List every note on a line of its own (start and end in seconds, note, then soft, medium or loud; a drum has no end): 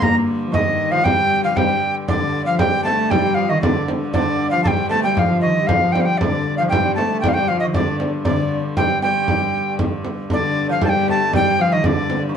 0.00 2.08 G2 medium
0.00 2.08 D3 medium
0.00 0.13 A#3 medium
0.00 0.14 A#3 medium
0.00 0.15 A#5 medium
0.00 frame drum medium
0.28 frame drum soft
0.46 0.55 F3 medium
0.52 0.93 D#3 medium
0.52 1.06 D#3 medium
0.52 0.93 D#5 medium
0.52 frame drum medium
0.79 frame drum soft
0.91 1.05 F3 medium
0.91 1.06 F5 medium
1.04 1.54 G3 medium
1.04 1.41 G3 medium
1.04 1.43 G5 loud
1.04 frame drum medium
1.44 1.56 F3 medium
1.44 1.58 F5 medium
1.55 1.92 G3 medium
1.55 1.93 G3 medium
1.55 1.95 G5 medium
1.55 frame drum medium
2.08 6.21 G2 medium
2.08 2.61 D3 medium
2.08 6.20 D3 medium
2.08 2.44 D3 medium
2.08 2.44 D5 medium
2.08 frame drum medium
2.46 2.61 F3 medium
2.46 2.58 F5 medium
2.59 2.86 G3 medium
2.59 2.85 G3 medium
2.59 2.83 G5 medium
2.59 frame drum medium
2.84 3.09 A3 medium
2.84 3.12 A3 medium
2.84 3.12 A5 medium
2.84 frame drum medium
3.10 3.49 G3 medium
3.10 3.36 G3 medium
3.10 3.36 G5 medium
3.10 frame drum medium
3.35 3.50 F3 medium
3.35 3.51 F5 medium
3.49 3.62 D#3 medium
3.49 3.61 D#5 medium
3.62 3.99 D3 medium
3.62 3.90 D5 medium
3.62 frame drum medium
3.88 frame drum medium
4.13 4.50 D3 medium
4.13 4.54 D3 medium
4.13 4.50 D5 medium
4.13 frame drum medium
4.51 4.64 F3 medium
4.51 4.68 F3 medium
4.51 4.63 F5 medium
4.64 4.92 G3 medium
4.64 4.91 G3 medium
4.64 4.89 G5 medium
4.64 4.69 A5 medium
4.64 frame drum medium
4.89 5.04 A3 medium
4.89 5.06 A3 medium
4.89 5.03 A5 medium
4.89 frame drum medium
5.03 5.16 G3 medium
5.03 5.19 G3 medium
5.03 5.15 G5 medium
5.15 5.44 F3 medium
5.15 5.61 F3 medium
5.15 5.40 F5 medium
5.15 5.20 G5 medium
5.15 frame drum medium
5.41 5.70 D#3 medium
5.41 5.69 D#5 medium
5.62 5.71 G3 medium
5.67 5.92 F3 medium
5.67 6.21 F3 medium
5.67 5.94 F5 medium
5.67 frame drum medium
5.92 6.21 G3 medium
5.92 6.02 G5 medium
5.92 frame drum medium
6.00 6.07 F5 medium
6.05 6.19 G5 medium
6.18 10.30 G2 medium
6.18 10.31 D3 medium
6.18 6.60 D3 medium
6.18 6.57 D3 medium
6.18 6.57 D5 medium
6.18 frame drum medium
6.58 6.71 F3 medium
6.58 6.73 F3 medium
6.58 6.64 F5 medium
6.69 6.98 G3 medium
6.69 6.94 G5 medium
6.69 frame drum loud
6.73 6.96 G3 medium
6.95 7.25 A3 medium
6.95 7.24 A3 medium
6.95 7.20 A5 medium
6.95 frame drum medium
7.21 7.36 G3 medium
7.21 7.30 G5 medium
7.21 frame drum medium
7.29 7.35 F5 medium
7.34 7.51 G3 medium
7.34 7.49 G3 medium
7.34 7.50 G5 medium
7.48 7.76 F3 medium
7.48 7.62 F3 medium
7.48 7.59 F5 medium
7.60 7.75 D#3 medium
7.60 7.66 D#5 medium
7.74 8.13 D3 medium
7.74 8.11 D3 medium
7.74 8.10 D5 medium
7.74 frame drum medium
8.00 frame drum medium
8.25 8.62 D3 medium
8.25 8.61 D5 medium
8.25 frame drum medium
8.77 9.01 G3 medium
8.77 9.04 G3 medium
8.77 9.01 G5 medium
8.77 frame drum medium
9.02 9.76 G3 medium
9.02 9.75 G5 medium
9.02 frame drum medium
9.28 frame drum medium
9.79 frame drum medium
10.05 frame drum medium
10.30 12.37 G2 medium
10.30 12.37 D3 medium
10.30 10.78 D3 medium
10.30 10.70 D3 medium
10.30 10.68 D5 medium
10.30 frame drum medium
10.69 10.82 F3 medium
10.69 10.82 F5 medium
10.81 11.08 G3 medium
10.81 11.30 G3 medium
10.81 10.90 A5 medium
10.81 frame drum medium
10.89 11.07 G5 loud
11.08 11.34 A3 medium
11.08 11.33 A5 loud
11.08 frame drum medium
11.33 11.59 G3 medium
11.33 11.61 G3 medium
11.33 11.63 G5 loud
11.33 frame drum medium
11.59 11.72 F3 medium
11.59 11.83 F3 medium
11.59 11.74 F5 medium
11.72 11.84 D#3 medium
11.72 11.87 D#5 medium
11.84 12.20 D3 medium
11.84 12.23 D5 medium
11.84 frame drum medium
12.10 frame drum medium
12.29 12.34 D#3 medium